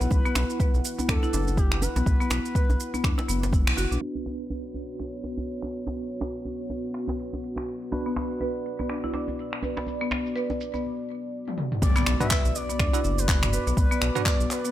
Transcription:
Already playing: E4 B4 F#5
0.01 B1 B3, shaker
0.11 B1 B4, kick, djembe tone, shaker
0.25 B3, shaker
0.35 B1, finger snap, djembe slap, djembe tone, shaker
0.50 shaker
0.60 B4, kick, djembe tone, shaker
0.74 B1, shaker
0.85 shaker
0.99 B3, djembe tone, shaker
1.09 E2 D4 A4, finger snap, kick, shaker
1.23 E4, djembe tone, shaker
1.33 F#1 D4, djembe slap, shaker
1.48 djembe tone, shaker
1.57 G4, kick, shaker
1.72 finger snap, shaker
1.82 B4, djembe tone, shaker
1.96 B1 B3, djembe slap, shaker
2.06 B1, kick, djembe tone, shaker
2.21 B3, shaker
2.30 B1, finger snap, djembe slap, djembe tone, shaker
2.45 shaker
2.55 B4, kick, shaker
2.69 B1, djembe tone, shaker
2.80 shaker
2.94 B3, djembe tone, shaker
3.04 E2 D4, finger snap, kick, shaker
3.18 E4, djembe slap, djembe tone, shaker
3.29 F#1 B3, shaker
3.43 djembe slap, shaker
3.53 kick, djembe tone, shaker
3.67 B1, finger snap, shaker
3.77 F#1 F#4, djembe tone, shaker
3.91 B1 D4, shaker
4.01 B3 D4 F#4 B4 C#5
4.15 djembe tone
4.26 finger snap, djembe slap
4.50 djembe tone, shaker
4.75 djembe tone, shaker
4.90 shaker
4.99 finger snap, djembe tone
5.24 djembe slap, shaker
5.37 djembe tone, shaker
5.48 shaker
5.62 finger snap, djembe tone
5.73 shaker
5.87 djembe slap, djembe tone
5.97 shaker
6.11 shaker
6.21 finger snap, djembe slap, djembe tone
6.36 shaker
6.45 djembe tone, shaker
6.60 shaker
6.70 djembe tone, shaker
6.85 shaker
6.94 finger snap
7.08 djembe slap, djembe tone
7.19 shaker
7.33 djembe tone, shaker
7.44 shaker
7.56 finger snap, djembe tone
7.68 shaker
7.82 shaker
7.92 B3 D4 F#4 B4 D5, djembe tone, shaker
8.06 B3, shaker
8.16 finger snap, djembe slap, djembe tone, shaker
8.31 shaker
8.41 B4, djembe tone, shaker
8.55 shaker
8.66 shaker
8.79 B3, djembe tone, shaker
8.89 D4, finger snap, shaker
9.04 E4, djembe tone, shaker
9.13 D4, djembe slap, shaker
9.28 djembe tone, shaker
9.39 shaker
9.53 finger snap, shaker
9.63 B4, djembe tone, shaker
9.77 B3, djembe slap, shaker
9.87 djembe tone, shaker
10.01 B3, shaker
10.11 finger snap, djembe slap, djembe tone, shaker
10.26 shaker
10.36 B4, shaker
10.50 djembe tone, shaker
10.61 shaker
10.74 B3, djembe tone, shaker
11.48 high tom
11.58 mid tom
11.72 mid tom
11.82 B1 B3 F#4 D5, kick, impact, shaker
11.96 B3, clap, shaker
12.06 B1, finger snap, shaker
12.21 B3 D4 F#4 B4 E5, mid tom, shaker
12.31 B4, kick, clap, shaker
12.45 B1, shaker
12.55 D5, shaker
12.69 B3, shaker
12.79 E2 D4, finger snap, kick, shaker
12.93 B3 D4 E4 F#4 B4, shaker
13.04 F#1 D4, shaker
13.18 B4, shaker
13.28 kick, clap, shaker
13.43 finger snap, mid tom, shaker
13.53 B4, shaker
13.67 B1 B3, shaker
13.77 B1 B4, kick, shaker
13.91 B3, shaker
14.02 B1, finger snap, shaker
14.15 B3 D4 F#4 B4 D5, mid tom, shaker
14.26 B4, kick, clap, shaker
14.40 B1, shaker
14.51 B4, clap, shaker
14.65 B3, shaker

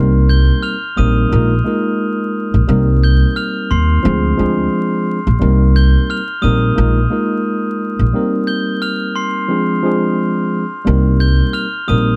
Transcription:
Already playing: C2 G3 A#3 C4 D#4 A#4
0.29 G6 G7
0.63 F6 F7
0.96 A#1 G3 A#3 C4 D#4 A#4 D#6 D#7
1.30 A#1 G#3 A#3 D#4 F4 A#4
1.64 G#3 A#3 D#4 F4 A#4
2.54 A#1
2.68 C2 G3 A#3 C4 D#4 A#4
3.03 G6 G7
3.36 F6 F7
3.71 D#2 C6 C7
4.03 D2 F3 G#3 C4 D4 G#4
4.37 D2 F3 G#3 C4 D4 G#4
5.27 A#1
5.39 C2 G3 A#3 C4 D#4 A#4
5.76 G6 G7
6.10 F6 F7
6.42 A#1 G3 A#3 C4 D#4 A#4 D#6 D#7
6.75 A#1 G#3 A#3 D#4 F4 A#4
7.10 G#3 A#3 D#4 F4 A#4
7.99 A#1
8.13 G3 A#3 C4 D#4 A#4
8.47 G6 G7
8.82 F6 F7
9.16 C6 C7
9.48 F3 G#3 C4 D4 G#4
9.83 F3 G#3 C4 D4 G#4
10.85 C2 G3 A#3 C4 D#4 A#4
11.20 G6 G7
11.53 F6 F7
11.87 A#1 G3 A#3 C4 D#4 A#4 D#6 D#7

